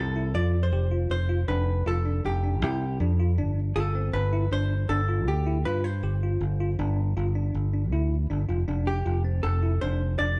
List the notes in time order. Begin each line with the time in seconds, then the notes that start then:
Already playing: C2 A4
0.16 E4
0.34 F2 F4 D5
0.63 C5
0.72 F1 G4
0.91 F4
1.10 F1 C5
1.29 F4
1.48 F1 D4 B4
1.86 F1 F4 A4
2.06 D4
2.24 F1 G4
2.44 D4
2.62 C2 E4 G4
3.00 F2 D4
3.20 F4
3.38 G1 D4
3.76 G1 F4 A4
3.95 C4
4.13 G1 B4
4.33 E4
4.51 G1 D4 C5
4.89 G1 D4 A4
5.08 F4
5.27 D2 G4
5.46 E4
5.65 G2 F4 B4
5.84 C5
6.03 G1 G4
6.23 F4
6.41 G1
6.60 F4
6.79 G1 D4
7.17 G1 F4
7.35 D4
7.54 G1
7.74 D4
7.92 D2 E4
8.30 G1 D4
8.49 F1 F4
8.68 F1 D4
8.87 G4
9.06 F1 F4
9.24 C4
9.43 F1 A4
9.63 E4
9.81 F1 D4 C5
10.19 F1 D4 D5